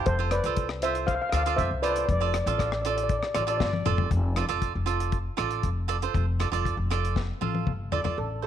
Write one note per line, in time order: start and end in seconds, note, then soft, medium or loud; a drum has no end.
0.06 0.38 F1 loud
0.06 0.30 A4 medium
0.06 0.33 C5 loud
0.06 kick loud
0.06 closed hi-hat medium
0.19 0.34 F4 medium
0.19 0.34 A4 medium
0.19 0.35 C5 medium
0.31 0.79 B4 medium
0.31 0.79 D5 medium
0.31 cross-stick medium
0.31 closed hi-hat medium
0.44 1.17 C2 medium
0.44 0.68 F4 medium
0.44 0.68 A4 medium
0.44 0.68 C5 medium
0.44 closed hi-hat medium
0.57 kick loud
0.57 closed hi-hat medium
0.69 cross-stick medium
0.82 1.13 F4 medium
0.82 1.14 A4 medium
0.82 0.94 C5 medium
0.82 1.14 C5 medium
0.82 0.94 E5 medium
0.82 closed hi-hat medium
0.95 closed hi-hat medium
1.07 1.14 C5 medium
1.07 1.13 F5 medium
1.07 kick loud
1.07 closed hi-hat medium
1.15 1.20 F5 medium
1.22 1.28 F5 medium
1.29 1.53 D2 medium
1.29 1.41 F4 medium
1.29 1.36 F5 medium
1.29 cross-stick medium
1.29 closed hi-hat medium
1.34 1.41 A4 medium
1.34 1.41 D5 medium
1.34 1.42 F5 medium
1.43 1.69 F4 medium
1.43 1.69 A4 medium
1.43 1.69 D5 medium
1.43 1.52 F5 medium
1.43 closed hi-hat medium
1.57 1.69 F1 loud
1.57 1.81 C5 medium
1.57 1.84 E5 medium
1.57 kick medium
1.57 closed hi-hat medium
1.71 2.02 C2 medium
1.82 2.06 F4 medium
1.82 2.06 A4 medium
1.82 1.90 B4 medium
1.82 2.06 C5 medium
1.82 1.89 D5 medium
1.82 closed hi-hat medium
1.90 1.97 D5 medium
1.96 2.05 D5 medium
1.96 closed hi-hat medium
2.06 2.40 F1 loud
2.06 2.11 D5 medium
2.06 kick loud
2.06 closed hi-hat medium
2.12 2.20 D5 medium
2.21 2.36 F4 medium
2.21 2.36 A4 medium
2.21 2.27 D5 medium
2.21 2.37 D5 medium
2.28 2.35 D5 soft
2.34 2.43 D5 soft
2.34 cross-stick medium
2.34 closed hi-hat medium
2.44 3.19 A1 medium
2.44 2.70 F4 medium
2.44 2.70 A4 medium
2.44 2.50 D5 soft
2.44 2.70 F5 medium
2.44 closed hi-hat medium
2.51 2.57 D5 soft
2.59 2.65 D5 medium
2.59 kick medium
2.59 cross-stick medium
2.59 closed hi-hat medium
2.66 2.73 D5 soft
2.72 2.81 D5 medium
2.72 cross-stick medium
2.82 3.15 F4 medium
2.82 3.16 A4 medium
2.82 2.89 D5 soft
2.82 closed hi-hat medium
2.86 3.16 D5 medium
2.86 2.95 D5 medium
2.97 3.02 D5 soft
2.97 closed hi-hat medium
3.03 3.11 D5 medium
3.09 3.18 D5 medium
3.09 kick loud
3.09 closed hi-hat medium
3.19 3.26 D5 medium
3.19 cross-stick medium
3.27 3.33 D5 soft
3.34 3.58 A1 medium
3.34 3.43 F4 medium
3.34 3.43 A4 medium
3.34 3.41 D5 medium
3.34 3.43 D5 medium
3.34 cross-stick medium
3.34 closed hi-hat medium
3.42 3.49 D5 medium
3.47 3.70 F4 medium
3.47 3.70 A4 medium
3.47 3.71 D5 medium
3.47 3.57 D5 medium
3.47 closed hi-hat medium
3.58 3.83 G1 medium
3.58 3.63 D5 medium
3.58 kick medium
3.58 snare medium
3.65 3.71 D5 medium
3.73 high tom medium
3.85 4.09 F1 medium
3.85 4.08 F4 medium
3.85 4.08 A4 medium
3.85 4.09 D5 loud
3.85 mid tom medium
3.98 floor tom loud
4.11 4.42 F1 loud
4.11 kick loud
4.11 closed hi-hat medium
4.36 4.44 F4 medium
4.36 4.44 A4 medium
4.36 4.44 D5 medium
4.36 cross-stick medium
4.36 closed hi-hat medium
4.49 4.70 F1 medium
4.49 4.72 F4 loud
4.49 4.72 A4 medium
4.49 4.72 D5 medium
4.49 closed hi-hat medium
4.62 kick medium
4.62 closed hi-hat medium
4.75 5.27 F1 medium
4.86 5.17 F4 medium
4.86 5.17 A4 medium
4.86 5.17 D5 medium
4.86 closed hi-hat medium
5.00 closed hi-hat medium
5.12 kick loud
5.12 closed hi-hat medium
5.37 5.59 A1 medium
5.37 5.68 F4 medium
5.37 5.68 A4 medium
5.37 5.68 D5 medium
5.37 cross-stick medium
5.37 closed hi-hat medium
5.51 closed hi-hat medium
5.63 6.05 F1 medium
5.63 kick medium
5.63 closed hi-hat medium
5.88 5.96 F4 medium
5.88 5.96 A4 medium
5.88 5.96 D5 loud
5.88 closed hi-hat medium
6.02 6.25 F4 medium
6.02 6.25 A4 medium
6.02 6.25 C5 medium
6.02 closed hi-hat medium
6.14 6.46 F1 loud
6.14 kick loud
6.14 closed hi-hat medium
6.40 6.47 F4 medium
6.40 6.47 A4 medium
6.40 6.48 D5 medium
6.40 cross-stick medium
6.40 closed hi-hat medium
6.52 6.73 F1 medium
6.52 6.75 F4 medium
6.52 6.75 A4 medium
6.52 6.75 D5 loud
6.52 closed hi-hat medium
6.65 kick medium
6.65 closed hi-hat medium
6.77 7.30 F1 medium
6.90 7.21 F4 medium
6.90 7.21 A4 medium
6.90 7.21 D5 medium
6.90 cross-stick medium
6.90 closed hi-hat medium
7.05 closed hi-hat medium
7.16 kick loud
7.16 snare medium
7.41 7.62 A1 medium
7.41 7.71 F4 medium
7.41 7.72 A4 medium
7.41 7.72 F5 medium
7.41 high tom medium
7.55 high tom medium
7.67 8.09 G1 medium
7.67 kick medium
7.67 mid tom medium
7.92 7.99 F4 medium
7.92 8.00 A4 medium
7.92 8.18 D5 medium
7.92 8.00 D5 medium
7.92 floor tom medium
8.04 8.17 F4 medium
8.04 8.17 A4 medium
8.04 8.17 D5 medium
8.04 floor tom medium
8.18 8.47 A1 medium
8.18 8.43 A4 medium
8.42 8.47 E4 medium
8.42 8.47 A4 soft
8.42 8.47 A4 medium
8.42 8.47 C5 medium